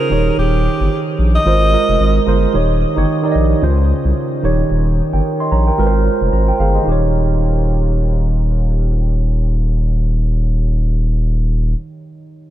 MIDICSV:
0, 0, Header, 1, 4, 480
1, 0, Start_track
1, 0, Tempo, 540541
1, 337, Time_signature, 4, 2, 24, 8
1, 11102, End_track
2, 0, Start_track
2, 0, Title_t, "Alto saxophone"
2, 0, Program_c, 0, 65
2, 0, Note_on_c, 0, 70, 101
2, 337, Note_off_c, 0, 70, 0
2, 343, Note_on_c, 0, 67, 90
2, 923, Note_off_c, 0, 67, 0
2, 1202, Note_on_c, 0, 75, 115
2, 1984, Note_off_c, 0, 75, 0
2, 11102, End_track
3, 0, Start_track
3, 0, Title_t, "Tine electric piano"
3, 0, Program_c, 1, 4
3, 0, Control_c, 1, 64, 127
3, 0, Note_on_c, 1, 49, 78
3, 0, Note_on_c, 1, 61, 71
3, 0, Note_on_c, 1, 63, 57
3, 0, Note_on_c, 1, 65, 71
3, 0, Note_on_c, 1, 72, 86
3, 86, Note_on_c, 1, 51, 82
3, 94, Note_off_c, 1, 63, 0
3, 94, Note_on_c, 1, 63, 79
3, 100, Note_on_c, 1, 67, 74
3, 108, Control_c, 1, 64, 0
3, 108, Note_on_c, 1, 73, 90
3, 110, Note_off_c, 1, 72, 0
3, 111, Note_off_c, 1, 61, 0
3, 116, Note_off_c, 1, 49, 0
3, 117, Note_off_c, 1, 65, 0
3, 249, Control_c, 1, 64, 127
3, 889, Note_off_c, 1, 51, 0
3, 893, Note_off_c, 1, 63, 0
3, 896, Note_off_c, 1, 67, 0
3, 900, Note_off_c, 1, 73, 0
3, 1286, Note_on_c, 1, 56, 81
3, 1294, Note_on_c, 1, 65, 76
3, 1302, Note_on_c, 1, 70, 77
3, 1306, Control_c, 1, 64, 0
3, 1309, Note_on_c, 1, 72, 95
3, 1469, Control_c, 1, 64, 127
3, 1495, Note_off_c, 1, 56, 0
3, 1499, Note_off_c, 1, 65, 0
3, 1503, Note_off_c, 1, 70, 0
3, 1506, Note_off_c, 1, 72, 0
3, 1526, Note_on_c, 1, 56, 76
3, 1535, Note_on_c, 1, 65, 69
3, 1542, Note_on_c, 1, 70, 71
3, 1549, Note_on_c, 1, 75, 84
3, 1939, Note_off_c, 1, 56, 0
3, 1943, Note_off_c, 1, 65, 0
3, 1946, Note_off_c, 1, 70, 0
3, 1950, Note_off_c, 1, 75, 0
3, 2006, Note_on_c, 1, 56, 86
3, 2013, Note_on_c, 1, 65, 76
3, 2021, Note_on_c, 1, 70, 75
3, 2029, Note_on_c, 1, 72, 96
3, 2215, Note_off_c, 1, 56, 0
3, 2218, Note_off_c, 1, 65, 0
3, 2223, Note_off_c, 1, 70, 0
3, 2226, Note_off_c, 1, 72, 0
3, 2246, Note_on_c, 1, 51, 85
3, 2253, Note_on_c, 1, 63, 77
3, 2260, Note_on_c, 1, 67, 78
3, 2268, Note_on_c, 1, 73, 97
3, 2270, Control_c, 1, 64, 0
3, 2403, Control_c, 1, 64, 127
3, 2555, Note_off_c, 1, 51, 0
3, 2559, Note_off_c, 1, 63, 0
3, 2562, Note_off_c, 1, 67, 0
3, 2566, Note_off_c, 1, 73, 0
3, 2625, Note_on_c, 1, 51, 88
3, 2632, Note_on_c, 1, 63, 80
3, 2640, Note_on_c, 1, 67, 81
3, 2647, Note_on_c, 1, 73, 98
3, 2820, Note_off_c, 1, 51, 0
3, 2823, Note_off_c, 1, 63, 0
3, 2828, Note_off_c, 1, 67, 0
3, 2831, Note_off_c, 1, 73, 0
3, 2864, Note_on_c, 1, 51, 90
3, 2872, Note_on_c, 1, 63, 80
3, 2880, Note_on_c, 1, 67, 80
3, 2888, Note_on_c, 1, 74, 78
3, 2930, Note_off_c, 1, 74, 0
3, 2945, Note_on_c, 1, 75, 96
3, 3207, Note_on_c, 1, 49, 96
3, 3211, Note_off_c, 1, 51, 0
3, 3214, Note_on_c, 1, 61, 87
3, 3215, Note_off_c, 1, 63, 0
3, 3218, Note_off_c, 1, 67, 0
3, 3221, Note_on_c, 1, 65, 85
3, 3228, Note_on_c, 1, 72, 104
3, 3229, Control_c, 1, 64, 0
3, 3251, Note_off_c, 1, 75, 0
3, 3382, Control_c, 1, 64, 127
3, 3820, Note_off_c, 1, 49, 0
3, 3823, Note_off_c, 1, 61, 0
3, 3827, Note_off_c, 1, 65, 0
3, 3831, Note_off_c, 1, 72, 0
3, 3929, Note_on_c, 1, 51, 94
3, 3937, Note_on_c, 1, 63, 87
3, 3944, Note_on_c, 1, 67, 84
3, 3948, Control_c, 1, 64, 0
3, 3950, Note_on_c, 1, 73, 102
3, 4122, Control_c, 1, 64, 127
3, 4423, Note_off_c, 1, 73, 0
3, 4427, Note_off_c, 1, 51, 0
3, 4431, Note_off_c, 1, 63, 0
3, 4434, Note_off_c, 1, 67, 0
3, 4559, Note_on_c, 1, 79, 63
3, 4564, Note_on_c, 1, 70, 54
3, 4786, Note_off_c, 1, 79, 0
3, 4788, Note_off_c, 1, 70, 0
3, 4798, Note_on_c, 1, 84, 72
3, 4804, Note_on_c, 1, 75, 56
3, 4893, Note_off_c, 1, 84, 0
3, 4896, Note_off_c, 1, 75, 0
3, 4901, Note_on_c, 1, 82, 68
3, 4906, Note_on_c, 1, 73, 59
3, 5031, Note_off_c, 1, 82, 0
3, 5033, Note_off_c, 1, 73, 0
3, 5038, Note_on_c, 1, 79, 64
3, 5044, Note_on_c, 1, 70, 53
3, 5130, Note_on_c, 1, 56, 92
3, 5134, Note_off_c, 1, 70, 0
3, 5138, Note_on_c, 1, 65, 86
3, 5144, Note_on_c, 1, 70, 85
3, 5146, Control_c, 1, 64, 0
3, 5153, Note_on_c, 1, 71, 82
3, 5209, Note_on_c, 1, 72, 102
3, 5211, Note_off_c, 1, 71, 0
3, 5265, Note_off_c, 1, 79, 0
3, 5324, Control_c, 1, 64, 127
3, 5620, Note_off_c, 1, 70, 0
3, 5620, Note_on_c, 1, 82, 59
3, 5653, Note_off_c, 1, 72, 0
3, 5751, Note_off_c, 1, 82, 0
3, 5758, Note_on_c, 1, 79, 67
3, 5764, Note_on_c, 1, 70, 59
3, 5853, Note_off_c, 1, 79, 0
3, 5855, Note_off_c, 1, 70, 0
3, 5859, Note_on_c, 1, 77, 67
3, 5864, Note_on_c, 1, 68, 60
3, 5931, Note_off_c, 1, 56, 0
3, 5935, Note_off_c, 1, 65, 0
3, 5990, Note_off_c, 1, 77, 0
3, 5993, Note_off_c, 1, 68, 0
3, 5997, Note_on_c, 1, 75, 63
3, 6003, Note_on_c, 1, 67, 55
3, 6053, Note_on_c, 1, 51, 75
3, 6081, Note_on_c, 1, 63, 70
3, 6101, Note_off_c, 1, 67, 0
3, 6109, Control_c, 1, 64, 0
3, 6112, Note_on_c, 1, 67, 73
3, 6141, Note_on_c, 1, 73, 82
3, 6224, Note_off_c, 1, 75, 0
3, 6247, Control_c, 1, 64, 127
3, 10385, Note_off_c, 1, 51, 0
3, 10414, Note_off_c, 1, 63, 0
3, 10444, Note_off_c, 1, 67, 0
3, 10473, Note_off_c, 1, 73, 0
3, 11102, End_track
4, 0, Start_track
4, 0, Title_t, "Sub bass"
4, 0, Program_c, 2, 38
4, 96, Note_on_c, 2, 27, 106
4, 267, Note_off_c, 2, 27, 0
4, 337, Note_on_c, 2, 27, 117
4, 607, Note_off_c, 2, 27, 0
4, 715, Note_on_c, 2, 31, 90
4, 787, Note_off_c, 2, 31, 0
4, 1055, Note_on_c, 2, 34, 95
4, 1227, Note_off_c, 2, 34, 0
4, 1296, Note_on_c, 2, 32, 111
4, 1566, Note_off_c, 2, 32, 0
4, 1676, Note_on_c, 2, 29, 87
4, 1748, Note_off_c, 2, 29, 0
4, 1777, Note_on_c, 2, 32, 101
4, 1948, Note_off_c, 2, 32, 0
4, 2016, Note_on_c, 2, 31, 96
4, 2187, Note_off_c, 2, 31, 0
4, 2258, Note_on_c, 2, 27, 109
4, 2528, Note_off_c, 2, 27, 0
4, 2639, Note_on_c, 2, 31, 94
4, 2709, Note_off_c, 2, 31, 0
4, 2977, Note_on_c, 2, 34, 86
4, 3148, Note_off_c, 2, 34, 0
4, 3219, Note_on_c, 2, 37, 104
4, 3488, Note_off_c, 2, 37, 0
4, 3596, Note_on_c, 2, 36, 87
4, 3667, Note_off_c, 2, 36, 0
4, 3939, Note_on_c, 2, 27, 100
4, 4109, Note_off_c, 2, 27, 0
4, 4180, Note_on_c, 2, 27, 109
4, 4449, Note_off_c, 2, 27, 0
4, 4558, Note_on_c, 2, 31, 81
4, 4629, Note_off_c, 2, 31, 0
4, 4900, Note_on_c, 2, 34, 89
4, 5069, Note_off_c, 2, 34, 0
4, 5139, Note_on_c, 2, 32, 100
4, 5408, Note_off_c, 2, 32, 0
4, 5517, Note_on_c, 2, 29, 80
4, 5588, Note_off_c, 2, 29, 0
4, 5618, Note_on_c, 2, 32, 95
4, 5788, Note_off_c, 2, 32, 0
4, 5856, Note_on_c, 2, 31, 98
4, 6027, Note_off_c, 2, 31, 0
4, 6097, Note_on_c, 2, 27, 98
4, 10430, Note_off_c, 2, 27, 0
4, 11102, End_track
0, 0, End_of_file